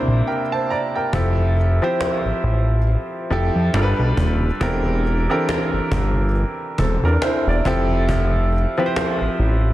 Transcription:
Already playing: grand piano C3 A#3 D4 E4 C5
0.08 analog synth bass A#1
0.27 grand piano A#4 G5
0.52 grand piano C5 A5
0.70 grand piano D5 A#5
0.96 grand piano A#4 G5
1.13 analog synth bass F1, grand piano F3 C4 E4 G4 A4, cajon bass
1.57 cajon slap
1.82 grand piano F3 C4 E4 G4 C5
2.01 cajon slap
2.25 analog synth bass A1
2.43 analog synth bass A1
2.87 cajon slap
3.30 analog synth bass F1, grand piano F3 C4 E4 G4 A4
3.55 analog synth bass F2
3.74 analog synth bass G1, grand piano G3 D4 F4 A4 A#4, cajon slap
3.83 grand piano B4
3.99 analog synth bass B1
4.17 analog synth bass D#1, cajon bass
4.61 analog synth bass E1, grand piano E3 C4 D4 G4 A4 A#4, cajon bass
5.05 cajon slap
5.30 grand piano E3 C4 D4 G4 A4 A#4
5.49 cajon slap
5.73 analog synth bass G1
5.92 analog synth bass G1, cajon bass
6.35 cajon slap
6.78 analog synth bass E1, grand piano C4 A4, cajon bass
7.03 analog synth bass E2, grand piano D4 A#4
7.22 grand piano E4 C5, cajon slap
7.47 analog synth bass E1, grand piano D5
7.65 analog synth bass F1, grand piano F3 C4 E4 G4 A4, cajon bass
8.09 cajon bass
8.52 cajon slap
8.78 grand piano F3 C4 E4 G4 B4
8.86 grand piano C5
8.96 cajon slap
9.21 analog synth bass A1
9.39 analog synth bass A1

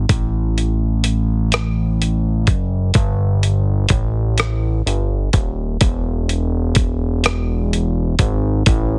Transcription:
0.09 analog synth bass A1, kick, closed hi-hat
0.58 closed hi-hat
1.04 closed hi-hat
1.52 cross-stick, closed hi-hat
2.02 closed hi-hat
2.47 analog synth bass F#1, kick, closed hi-hat
2.94 analog synth bass G1, kick, closed hi-hat
3.43 closed hi-hat
3.89 analog synth bass A1, kick, closed hi-hat
4.38 cross-stick, closed hi-hat
4.86 analog synth bass G1, closed hi-hat
5.33 analog synth bass D#1, kick, closed hi-hat
5.81 analog synth bass E1, kick, closed hi-hat
6.29 closed hi-hat
6.75 kick, closed hi-hat
7.24 cross-stick, closed hi-hat
7.73 closed hi-hat
8.19 analog synth bass G#1, kick, closed hi-hat
8.66 analog synth bass A1, kick, closed hi-hat

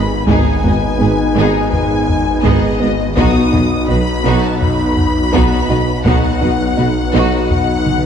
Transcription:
Already playing: detuned saw bass G#1, french horn section G#3 D#4, synth arpeggio sound B3, analog synth pad B3 D#4 G#4 B4, violin section B5
0.26 double bass section G#1, tuba G#1, detuned saw bass G#1, cello section G#2, synth arpeggio sound G#3, french horn section G#3 D#4, analog synth pad B3 D#4 G#4 B4, viola section B3 G#4, violin section D#4 G#4 G#5, taiko
0.63 tuba G#1, double bass section G#1, cello section G#2, synth arpeggio sound B3, viola section B3 G#4, violin section B4 D#5, taiko low
0.99 tuba G#1, double bass section G#1, cello section G#2, synth arpeggio sound B3, viola section B3 G#4, violin section G#4 B4
1.36 tuba G#1, double bass section G#1, cello section G#2, synth arpeggio sound G#3, viola section B3 G#4, violin section D#4 G#4
1.71 violin section G#5, taiko low
2.09 taiko low
2.44 tuba G#1, double bass section G#1, cello section G#2, synth arpeggio sound G#3, viola section B3 G#4, violin section D#4 G#4 D#5, taiko
2.80 tuba G#1, double bass section G#1, cello section G#2, synth arpeggio sound B3, viola section B3 G#4, violin section B4 D#5
3.16 tuba B1, detuned saw bass B1, double bass section B1, cello section B2, french horn section F#3 D#4, analog synth pad B3 D#4 F#4 B4, synth arpeggio sound B3, viola section B3 F#4, violin section D#4 F#4 D#6, taiko
3.52 tuba B1, double bass section B1, cello section B2, viola section B3 F#4, synth arpeggio sound D#4, violin section B4 D#5, taiko low
3.88 double bass section B1, tuba B1, cello section B2, viola section B3 F#4, synth arpeggio sound D#4, violin section F#4 B4 B5
4.24 double bass section B1, tuba B1, cello section B2, synth arpeggio sound B3, viola section B3 F#4, violin section D#4 F#4
4.43 violin section A5
4.58 violin section B5, taiko low
4.97 taiko low
5.33 double bass section B1, tuba B1, cello section B2, synth arpeggio sound B3, viola section B3 F#4, violin section D#4 F#4, taiko
5.69 tuba B1, double bass section B1, cello section B2, viola section B3 F#4, synth arpeggio sound D#4, violin section B4 D#5
6.04 tuba B1, double bass section B1, detuned saw bass B1, cello section B2, french horn section F#3 D#4, analog synth pad B3 D#4 F#4 B4, synth arpeggio sound B3, viola section B3 F#4, violin section D#4 F#4 F#5, taiko
6.41 double bass section B1, tuba B1, cello section B2, viola section B3 F#4, synth arpeggio sound D#4, violin section B4 D#5, taiko low
6.77 tuba B1, double bass section B1, cello section B2, viola section B3 F#4, synth arpeggio sound D#4, violin section F#4 B4
7.13 tuba B1, double bass section B1, cello section B2, synth arpeggio sound B3, viola section B3 F#4, violin section D#4 F#4
7.49 violin section F#5, taiko low
7.87 taiko mid

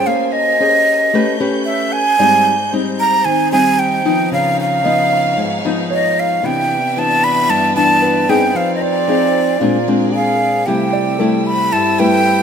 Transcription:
Already playing: nylon-string guitar C#4 G#4 C5, grand piano G4 C5, violin section C5
0.06 nylon-string guitar A#3, violin section C#4 A#4 G#5, flute F5
0.32 flute D#5
0.60 nylon-string guitar C#4 G#4 C5
1.13 nylon-string guitar A3 C#4 G4 B4, violin section A4 B4 G6
1.40 nylon-string guitar C#4 G4 B4
1.65 flute E5
1.92 flute G#5
2.19 nylon-string guitar G#2 G3 C4 D#4, violin section D#4 C5, grand piano D5
2.73 nylon-string guitar G3 C4 D#4
3.00 flute A#5
3.25 nylon-string guitar D#3, grand piano C4, flute G#5
3.52 nylon-string guitar G3 C4 D#4, flute G#5
3.79 flute G5
4.05 nylon-string guitar F3 B3 D#4
4.30 nylon-string guitar C#3, violin section B4 C#5 F5, flute F5
4.60 flute F5
4.84 nylon-string guitar F3 B3 D#4, grand piano D#5
5.37 nylon-string guitar G#2
5.65 nylon-string guitar F3 B3 D#4
5.90 grand piano C#5, flute D#5
6.19 flute F5
6.42 nylon-string guitar C3 E3 B3 D4, trombone B3, violin section D4 B4 D5 E5, flute G5
6.97 nylon-string guitar E3 B3 D4, flute A5
7.24 flute B5
7.49 nylon-string guitar G2, flute A5
7.76 nylon-string guitar E3 B3 D4, flute A5
8.02 grand piano B4
8.28 nylon-string guitar C4 D#4 G#4, flute G5
8.54 nylon-string guitar F3, trombone C4, violin section D#4 G#4 F5, flute F5
8.76 flute D#5
8.81 grand piano C5, flute D5
9.08 nylon-string guitar C4 D#4 G#4
9.60 nylon-string guitar A#2 G#3 C4 D4, violin section C4 A#4 D5, trombone F4
9.88 nylon-string guitar G#3 C4 D4
10.13 trombone G#4, flute F5
10.66 nylon-string guitar C3 G3 A3 E4, trombone G4, violin section G4 A4 E6, flute G5
10.93 grand piano D5
11.19 nylon-string guitar G3 A3 E4, grand piano A4
11.46 flute B5
11.72 nylon-string guitar G2, trombone E4, flute A5
11.99 nylon-string guitar G3 A3 E4, grand piano B4, flute G5
12.25 trombone E4

